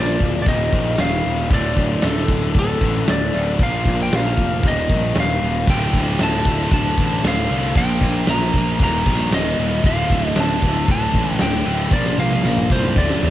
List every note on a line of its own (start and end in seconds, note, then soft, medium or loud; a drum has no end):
0.00 0.16 A#1 medium
0.00 0.21 A#2 medium
0.00 0.45 A#2 loud
0.00 0.22 F3 loud
0.00 0.46 F3 medium
0.00 0.22 A#3 loud
0.00 0.46 A#3 loud
0.00 0.46 D4 loud
0.00 0.47 F4 medium
0.00 0.47 A#4 loud
0.00 0.41 D5 loud
0.08 snare soft
0.20 0.43 D1 medium
0.20 0.46 A#2 medium
0.20 0.47 F3 loud
0.20 0.47 A#3 loud
0.20 kick medium
0.42 0.48 D5 medium
0.42 crash medium
0.46 0.69 D#1 loud
0.46 0.73 D#2 loud
0.46 0.73 A#2 loud
0.46 0.75 D#3 loud
0.46 1.50 G3 loud
0.46 1.51 G4 loud
0.46 1.02 D#5 loud
0.46 kick loud
0.73 0.95 A#1 loud
0.73 0.99 D#2 medium
0.73 0.99 A#2 loud
0.73 1.00 D#3 loud
0.73 kick medium
0.98 1.21 D#1 loud
0.98 1.24 D#2 medium
0.98 1.26 A#2 loud
0.98 1.26 D#3 medium
0.98 1.48 F5 loud
0.98 snare loud
0.98 crash medium
1.25 1.47 D#1 medium
1.25 1.50 D#2 loud
1.25 1.51 A#2 medium
1.25 1.51 D#3 medium
1.50 1.73 D1 loud
1.50 1.77 D2 loud
1.50 1.77 A2 loud
1.50 1.78 D3 loud
1.50 3.33 A3 loud
1.50 3.33 F4 loud
1.50 kick loud
1.50 crash medium
1.54 2.06 D5 loud
1.77 1.99 D1 loud
1.77 2.02 D2 medium
1.77 2.03 A2 loud
1.77 2.03 D3 loud
1.77 kick medium
2.02 2.25 D1 loud
2.02 2.29 D2 medium
2.02 2.30 A2 loud
2.02 2.30 D3 loud
2.02 snare loud
2.02 crash medium
2.07 2.58 A4 medium
2.15 snare soft
2.28 2.51 D1 loud
2.28 2.54 D2 medium
2.28 2.54 A2 medium
2.28 2.55 D3 loud
2.28 kick medium
2.54 2.77 D1 medium
2.54 2.80 D2 medium
2.54 2.80 A2 medium
2.54 2.81 D3 loud
2.54 kick loud
2.54 crash medium
2.59 3.11 A4 medium
2.81 3.03 A1 loud
2.81 3.07 D2 loud
2.81 3.08 A2 loud
2.81 3.08 D3 loud
2.81 kick medium
3.07 3.29 D1 loud
3.07 3.33 D2 medium
3.07 3.34 A2 medium
3.07 3.34 D3 loud
3.07 3.62 D5 loud
3.07 snare loud
3.07 crash medium
3.34 3.56 D1 medium
3.34 3.58 D2 medium
3.34 3.59 A2 loud
3.34 3.59 D3 loud
3.34 3.58 A3 medium
3.34 3.58 F4 medium
3.58 3.81 A#1 loud
3.58 3.85 A#2 medium
3.58 3.86 F3 loud
3.58 3.87 A#3 loud
3.58 4.63 D4 loud
3.58 4.63 F4 loud
3.58 kick loud
3.58 crash medium
3.63 4.63 A#4 loud
3.63 4.01 F5 loud
3.85 4.07 A#1 medium
3.85 4.12 A#2 medium
3.85 4.12 F3 medium
3.85 4.13 A#3 loud
3.85 kick medium
3.85 snare soft
4.03 4.15 G5 medium
4.12 4.33 A#1 loud
4.12 4.37 A#2 loud
4.12 4.37 F3 loud
4.12 4.37 A#3 loud
4.12 4.67 F5 loud
4.12 snare loud
4.12 crash medium
4.26 snare soft
4.38 4.59 F1 medium
4.38 4.62 A#2 medium
4.38 4.62 F3 medium
4.38 4.63 A#3 medium
4.38 kick medium
4.63 4.85 D#1 medium
4.63 4.88 D#2 loud
4.63 4.89 A#2 loud
4.63 4.89 D#3 loud
4.63 5.67 G3 loud
4.63 5.67 G4 loud
4.63 kick loud
4.63 crash medium
4.68 5.19 D#5 loud
4.89 5.11 A#1 medium
4.89 5.15 D#2 loud
4.89 5.15 A#2 loud
4.89 5.16 D#3 loud
4.89 kick loud
5.15 5.38 D#1 loud
5.15 5.42 D#2 medium
5.15 5.42 A#2 loud
5.15 5.43 D#3 loud
5.15 snare loud
5.15 crash medium
5.20 5.70 F5 loud
5.42 5.64 D#1 medium
5.42 5.67 D#2 medium
5.42 5.67 A#2 loud
5.42 5.67 D#3 loud
5.67 5.89 D1 loud
5.67 5.93 D2 loud
5.67 5.95 A2 loud
5.67 5.95 D3 loud
5.67 7.49 A3 loud
5.67 7.47 F4 loud
5.67 6.22 G5 loud
5.67 kick loud
5.67 crash medium
5.93 6.15 D1 medium
5.93 6.19 D2 medium
5.93 6.19 A2 medium
5.93 6.20 D3 medium
5.93 kick medium
5.93 snare soft
6.19 6.41 D1 medium
6.19 6.45 D2 loud
6.19 6.45 A2 loud
6.19 6.46 D3 loud
6.19 snare loud
6.19 crash medium
6.23 6.73 A5 loud
6.33 snare soft
6.45 6.67 D1 medium
6.45 6.70 D2 medium
6.45 6.71 A2 medium
6.45 6.71 D3 medium
6.45 kick medium
6.71 6.93 D1 medium
6.71 6.97 D2 medium
6.71 6.98 A2 medium
6.71 6.98 D3 loud
6.71 7.26 A5 loud
6.71 kick loud
6.71 crash medium
6.97 7.19 A1 medium
6.97 7.24 D2 loud
6.97 7.24 A2 loud
6.97 7.25 D3 loud
6.97 kick medium
7.24 7.46 D1 loud
7.24 7.50 D2 medium
7.24 7.50 A2 medium
7.24 7.51 D3 medium
7.24 snare loud
7.24 crash medium
7.28 7.77 F5 loud
7.48 7.71 C2 medium
7.48 7.75 D2 medium
7.48 7.75 A2 loud
7.48 7.74 A3 medium
7.48 7.73 F4 medium
7.52 7.75 D3 loud
7.75 7.97 A#1 loud
7.75 8.00 A#2 loud
7.75 8.02 F3 loud
7.75 8.02 A#3 loud
7.75 8.78 D4 loud
7.75 8.79 F4 loud
7.75 8.79 A#4 loud
7.75 8.25 G5 loud
7.75 kick loud
7.75 crash medium
8.01 8.23 A#1 medium
8.01 8.25 A#2 medium
8.01 8.26 F3 medium
8.01 8.27 A#3 medium
8.01 kick medium
8.01 snare soft
8.27 8.50 A#1 loud
8.27 8.52 A#2 medium
8.27 8.53 F3 loud
8.27 8.54 A#3 loud
8.27 8.83 A#5 loud
8.27 snare loud
8.27 crash medium
8.42 snare soft
8.54 8.76 A#1 medium
8.54 8.78 A#2 medium
8.54 8.78 F3 medium
8.54 8.79 A#3 loud
8.54 kick medium
8.80 9.02 D#1 loud
8.80 9.05 D#2 loud
8.80 9.06 A#2 loud
8.80 9.06 D#3 loud
8.80 9.83 G3 loud
8.80 9.83 G4 loud
8.80 9.35 A#5 loud
8.80 kick loud
8.80 crash medium
9.06 9.28 A#1 medium
9.06 9.32 D#2 loud
9.06 9.33 A#2 loud
9.06 9.33 D#3 loud
9.06 kick medium
9.31 9.53 D#1 loud
9.31 9.58 D#2 medium
9.31 9.58 A#2 medium
9.31 9.59 D#3 loud
9.31 9.86 D#5 loud
9.31 snare loud
9.31 crash medium
9.58 9.80 D#1 loud
9.58 9.83 D#2 medium
9.58 9.83 A#2 medium
9.58 9.84 D#3 loud
9.84 10.06 D1 loud
9.84 10.09 D2 loud
9.84 10.10 A2 loud
9.84 10.10 D3 loud
9.84 11.65 A3 loud
9.84 11.65 F4 loud
9.84 10.28 F5 loud
9.84 kick loud
9.84 crash medium
10.10 10.32 D1 loud
10.10 10.36 D2 medium
10.10 10.37 A2 medium
10.10 10.37 D3 loud
10.10 kick medium
10.10 snare soft
10.28 10.39 D#5 loud
10.35 10.58 D1 medium
10.35 10.63 D2 loud
10.35 10.64 A2 loud
10.35 10.65 D3 loud
10.35 snare loud
10.35 crash medium
10.40 10.90 A5 loud
10.50 snare soft
10.62 10.84 D1 loud
10.62 10.89 D2 medium
10.62 10.89 A2 medium
10.62 10.90 D3 loud
10.62 kick medium
10.88 11.10 D1 medium
10.88 11.15 D2 medium
10.88 11.15 A2 medium
10.88 11.16 D3 loud
10.88 11.41 A5 loud
10.88 kick loud
10.88 crash medium
11.13 11.35 A1 loud
11.13 11.40 D2 medium
11.13 11.41 A2 loud
11.13 11.42 D3 loud
11.13 kick medium
11.39 11.62 D1 medium
11.39 11.65 D2 medium
11.39 11.66 A2 medium
11.39 11.95 G5 loud
11.39 snare loud
11.39 crash medium
11.43 11.67 D3 loud
11.65 11.88 D1 medium
11.65 11.91 D2 medium
11.65 11.91 A2 medium
11.65 11.92 D3 loud
11.65 11.90 A3 medium
11.65 11.94 F4 medium
11.90 12.13 A#1 medium
11.90 12.17 A#2 loud
11.90 12.96 D4 loud
11.90 12.19 D5 loud
11.90 kick loud
11.90 high tom medium
11.95 12.18 F3 loud
11.95 12.19 A#3 loud
11.95 12.96 F4 loud
11.95 12.96 A#4 loud
12.05 snare medium
12.18 12.40 A#1 medium
12.18 12.44 A#2 medium
12.18 12.45 F3 loud
12.18 12.46 A#3 medium
12.18 12.73 F5 loud
12.18 high tom medium
12.31 high tom medium
12.43 12.65 A#1 medium
12.43 12.70 A#2 medium
12.43 12.70 F3 loud
12.43 snare medium
12.47 12.71 A#3 loud
12.57 mid tom medium
12.70 12.92 C2 medium
12.70 12.95 A#2 medium
12.70 12.95 F3 medium
12.70 12.96 A#3 loud
12.70 12.98 C5 loud
12.70 kick medium
12.83 mid tom medium
12.95 13.18 D1 medium
12.95 13.21 D2 loud
12.95 13.22 A2 loud
12.95 13.23 D3 loud
12.95 13.30 A3 loud
12.95 13.30 F4 loud
12.95 13.30 D5 medium
12.95 kick loud
12.95 mid tom medium
13.10 snare medium
13.21 13.30 A1 medium
13.21 13.30 D2 loud
13.21 13.30 A2 loud
13.21 13.30 D3 loud
13.21 mid tom medium